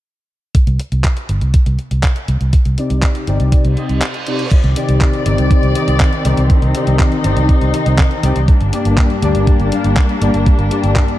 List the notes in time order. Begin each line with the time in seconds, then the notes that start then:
0.55 kick, closed hi-hat
0.67 C2, closed hi-hat
0.80 closed hi-hat
0.92 C2, closed hi-hat
1.04 kick, clap, closed hi-hat
1.17 closed hi-hat
1.29 G1, closed hi-hat
1.41 C2, closed hi-hat
1.54 kick, closed hi-hat
1.66 C2, closed hi-hat
1.79 closed hi-hat
1.91 C2, closed hi-hat
2.03 kick, clap, closed hi-hat
2.16 closed hi-hat
2.28 C2, closed hi-hat
2.41 C2, closed hi-hat
2.53 kick, closed hi-hat
2.65 C2, closed hi-hat
2.78 C3 C4 D#4 G4 D5, closed hi-hat
2.90 C2, closed hi-hat
3.03 kick, clap, closed hi-hat
3.15 closed hi-hat
3.27 G1 C3 C4 D#4 G4 D5, closed hi-hat
3.40 C2, closed hi-hat
3.52 kick, closed hi-hat, reverse cymbal
3.65 C2, closed hi-hat
3.77 C3 C4 D#4 G4 D#5, closed hi-hat
3.89 C2, closed hi-hat
4.02 clap, closed hi-hat
4.14 closed hi-hat
4.27 C3 C4 D#4 G4 D5, closed hi-hat
4.39 closed hi-hat
4.51 D#3 C4 D5, kick, closed hi-hat, crash
4.64 C2, closed hi-hat
4.76 C3 C4 D#4 G4 D5, closed hi-hat
4.89 C2, closed hi-hat
5.01 kick, clap, closed hi-hat
5.13 closed hi-hat
5.26 G1 C3 C4 D#4 G4 D5, closed hi-hat
5.38 C2, closed hi-hat
5.51 kick, closed hi-hat
5.63 C2, closed hi-hat
5.75 C3 C4 D#4 G4 D#5, closed hi-hat
5.88 C2, closed hi-hat
6.00 kick, clap, closed hi-hat
6.13 closed hi-hat
6.25 C2 C3 C4 D#4 G4 D5, closed hi-hat
6.37 C2, closed hi-hat
6.50 D#4, kick, closed hi-hat
6.62 C2, closed hi-hat
6.75 C3 C4 D#4 G4 D5, closed hi-hat
6.87 C2, closed hi-hat
6.99 kick, clap, closed hi-hat
7.12 closed hi-hat
7.24 G1 C3 C4 D#4 G4 D5, closed hi-hat
7.37 C2, closed hi-hat
7.49 kick, closed hi-hat
7.61 C2, closed hi-hat
7.74 C3 C4 D#4 G4 D#5, closed hi-hat
7.86 C2, closed hi-hat
7.99 kick, clap, closed hi-hat
8.11 closed hi-hat
8.23 C2 C4 D#4 G4 D5, closed hi-hat
8.36 C2, closed hi-hat
8.48 G3 A#3 D4, kick, closed hi-hat
8.61 G1, closed hi-hat
8.73 G2 A#3 D4 G4 D5, closed hi-hat
8.85 G1, closed hi-hat
8.98 kick, clap, closed hi-hat
9.10 closed hi-hat
9.22 D2 G2 A#3 D4 G4 D5, closed hi-hat
9.35 G1, closed hi-hat
9.47 kick, closed hi-hat
9.60 G1, closed hi-hat
9.72 G2 A#3 D4 G4 F5, closed hi-hat
9.84 G1, closed hi-hat
9.97 kick, clap, closed hi-hat
10.09 closed hi-hat
10.22 G1 G2 A#3 D4 G4 D5, closed hi-hat
10.34 G1, closed hi-hat
10.46 kick, closed hi-hat
10.59 G1, closed hi-hat
10.71 G2 A#3 D4 G4 D5, closed hi-hat
10.84 G1, closed hi-hat
10.96 kick, clap, closed hi-hat
11.08 closed hi-hat